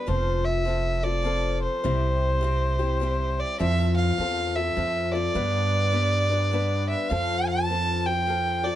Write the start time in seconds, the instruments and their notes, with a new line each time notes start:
0.07 upright bass F1, steel-string acoustic guitar F3 C4 F4 A4, fiddle C5
0.45 fiddle E5
0.65 steel-string acoustic guitar F3 C4 F4 A4
1.03 steel-string acoustic guitar C4 F4 A4, fiddle D5
1.23 steel-string acoustic guitar F3 C4 F4 A4
1.62 fiddle C5
1.84 upright bass C2, steel-string acoustic guitar C3 G3 C4 E4 G4
2.41 steel-string acoustic guitar G3 C4 E4 G4
2.79 steel-string acoustic guitar C4 E4 G4
3.00 steel-string acoustic guitar G3 C4 E4 G4
3.39 fiddle D5
3.59 upright bass F2, steel-string acoustic guitar F3 C4 F4 A4, fiddle E5
3.97 fiddle F5
4.18 upright bass E2, steel-string acoustic guitar F3 C4 F4 A4
4.55 steel-string acoustic guitar C4 F4 A4, fiddle E5
4.76 upright bass F2, steel-string acoustic guitar F3 C4 F4 A4
5.12 steel-string acoustic guitar C4 F4 A4, fiddle D5
5.35 steel-string acoustic guitar G2 D3 G3 B3 D4 B4, upright bass G2
5.92 steel-string acoustic guitar G3 B3 D4 B4
6.30 steel-string acoustic guitar G3 B3 D4 B4
6.51 steel-string acoustic guitar G3 B3 D4 B4
6.89 fiddle E5
7.10 upright bass F2, steel-string acoustic guitar F3 C4 F4 A4, fiddle F5
7.47 fiddle A5
7.68 steel-string acoustic guitar F3 C4 F4 A4
8.06 steel-string acoustic guitar C4 F4 A4, fiddle G5
8.26 steel-string acoustic guitar F3 C4 F4 A4
8.63 steel-string acoustic guitar C4 F4 A4, fiddle D5